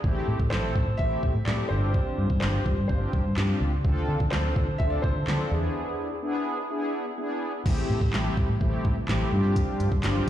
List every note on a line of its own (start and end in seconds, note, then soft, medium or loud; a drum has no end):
0.04 0.19 A1 loud
0.04 0.39 A3 loud
0.04 0.39 C4 medium
0.04 0.39 E4 medium
0.04 0.39 G4 loud
0.04 kick loud
0.28 0.35 A2 medium
0.40 0.53 A2 medium
0.40 kick medium
0.50 0.67 A1 medium
0.50 0.86 A3 medium
0.50 0.86 C4 medium
0.50 0.86 E4 medium
0.50 0.86 A4 loud
0.50 1.00 C5 medium
0.50 snare medium
0.50 clap loud
0.76 0.83 A2 loud
0.76 kick loud
0.87 0.95 A2 medium
0.97 1.15 A1 loud
0.97 1.34 A3 medium
0.97 1.34 C4 medium
0.97 1.34 E4 medium
0.97 1.34 G4 medium
0.97 1.47 E5 loud
0.97 kick medium
1.23 1.31 A2 medium
1.23 kick loud
1.35 1.43 A2 loud
1.45 1.62 A2 loud
1.45 1.70 A3 medium
1.45 1.69 C4 medium
1.45 1.71 E4 medium
1.45 1.69 G4 medium
1.45 1.70 D5 medium
1.45 snare medium
1.45 clap loud
1.69 2.01 G1 loud
1.69 2.27 C4 medium
1.69 2.28 D4 medium
1.69 2.28 F4 medium
1.69 2.28 G4 medium
1.69 2.39 C5 medium
1.94 kick loud
2.18 2.26 G2 medium
2.30 2.38 G2 medium
2.30 kick medium
2.40 2.57 G1 loud
2.40 2.77 C4 medium
2.40 2.77 D4 medium
2.40 2.77 F4 medium
2.40 2.77 G4 medium
2.40 2.86 C5 medium
2.40 snare medium
2.40 clap loud
2.66 2.74 G2 loud
2.66 kick medium
2.78 2.85 G2 loud
2.88 3.05 G1 loud
2.88 3.24 C4 medium
2.88 3.24 D4 medium
2.88 3.25 F4 medium
2.88 3.25 G4 medium
2.88 3.33 C5 medium
2.88 kick medium
3.13 3.21 G2 loud
3.13 kick loud
3.25 3.33 G2 loud
3.37 3.52 G2 loud
3.37 3.72 C4 medium
3.37 3.72 D4 medium
3.37 3.72 F4 medium
3.37 3.72 G4 medium
3.37 snare medium
3.37 clap loud
3.61 3.76 C#2 medium
3.84 4.00 D2 loud
3.84 4.19 C4 loud
3.84 4.19 D4 medium
3.84 4.19 F4 loud
3.84 4.20 A4 loud
3.84 kick loud
4.08 4.16 D3 medium
4.20 4.28 D3 medium
4.20 kick medium
4.31 4.48 D2 medium
4.31 4.67 C4 medium
4.31 4.67 D4 medium
4.31 4.67 F4 medium
4.31 4.67 A4 medium
4.31 4.76 C5 medium
4.31 snare medium
4.31 clap loud
4.56 4.64 D3 loud
4.56 kick loud
4.68 4.76 D3 medium
4.78 4.95 D2 loud
4.78 5.15 C4 medium
4.78 5.15 D4 medium
4.78 5.15 F4 medium
4.78 5.15 A4 medium
4.78 4.91 E5 loud
4.78 kick medium
4.90 5.03 D5 medium
5.02 5.11 D3 loud
5.02 5.52 C5 medium
5.02 kick loud
5.15 5.23 D3 medium
5.27 5.43 D3 loud
5.27 5.51 C4 medium
5.27 5.50 D4 medium
5.27 5.51 F4 medium
5.27 5.51 A4 loud
5.27 snare loud
5.27 clap loud
5.50 5.67 E2 medium
5.50 6.08 B3 medium
5.50 6.09 D4 medium
5.50 6.09 E4 medium
5.50 6.09 G#4 medium
5.50 7.13 D5 medium
6.23 6.58 B3 medium
6.23 6.58 D4 medium
6.23 6.58 E4 medium
6.23 6.58 G#4 loud
6.70 7.05 B3 medium
6.70 7.05 D4 medium
6.70 7.05 E4 medium
6.70 7.05 G#4 loud
7.18 7.53 B3 medium
7.18 7.53 D4 medium
7.18 7.53 E4 medium
7.18 7.53 G#4 loud
7.65 7.81 A1 loud
7.65 9.31 C3 medium
7.65 10.30 G3 medium
7.65 8.00 A3 medium
7.65 9.31 A3 medium
7.65 8.01 C4 medium
7.65 9.31 E4 medium
7.65 8.01 E4 medium
7.65 8.01 G4 loud
7.65 kick loud
7.65 crash loud
7.90 7.97 A2 loud
8.01 8.09 A2 medium
8.01 kick medium
8.13 8.29 A1 loud
8.13 8.48 A3 medium
8.13 8.48 C4 medium
8.13 8.48 E4 medium
8.13 8.48 G4 loud
8.13 snare medium
8.13 clap loud
8.37 8.45 A2 loud
8.37 kick loud
8.49 8.57 A2 medium
8.61 8.76 A1 loud
8.61 8.96 A3 medium
8.61 8.96 C4 medium
8.61 8.96 E4 medium
8.61 8.96 G4 loud
8.61 kick medium
8.85 9.00 A2 loud
8.85 kick loud
9.08 9.24 A1 medium
9.08 9.32 A3 medium
9.08 9.31 C4 medium
9.08 9.32 E4 medium
9.08 9.32 G4 loud
9.08 snare medium
9.08 clap loud
9.32 9.63 G2 loud
9.32 10.30 D3 medium
9.32 9.89 C4 medium
9.32 10.30 C4 medium
9.32 9.90 D4 medium
9.32 10.30 F4 medium
9.32 9.90 F4 medium
9.32 9.90 G4 loud
9.56 kick loud
9.56 closed hi-hat medium
9.80 9.88 G2 loud
9.80 closed hi-hat medium
9.92 9.99 G2 loud
9.92 kick medium
10.03 10.19 G1 loud
10.03 10.30 C4 loud
10.03 10.30 D4 medium
10.03 10.30 F4 medium
10.03 10.30 G4 loud
10.03 snare medium
10.03 clap loud
10.03 closed hi-hat medium